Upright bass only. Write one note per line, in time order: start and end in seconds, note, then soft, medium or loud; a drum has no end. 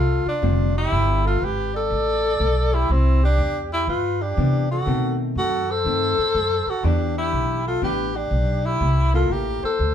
0.00 0.24 C2 medium
0.25 muted upright bass stroke soft
0.43 0.91 F1 medium
0.92 1.40 G1 medium
1.42 1.90 G#1 medium
1.90 2.39 A1 medium
2.40 2.88 B1 medium
2.89 3.37 C2 medium
3.38 3.86 E2 medium
3.87 4.36 G2 medium
4.37 4.85 C3 medium
4.86 5.34 B2 medium
5.35 5.84 F#2 medium
5.85 6.15 G2 medium
6.18 muted upright bass stroke soft
6.34 6.65 F#2 medium
6.66 muted upright bass stroke soft
6.83 7.32 E2 medium
7.32 7.81 B1 medium
7.82 8.30 A1 medium
8.31 8.79 B1 medium
8.81 9.29 C2 medium
9.30 9.60 A1 medium
9.63 muted upright bass stroke soft
9.79 9.95 D2 medium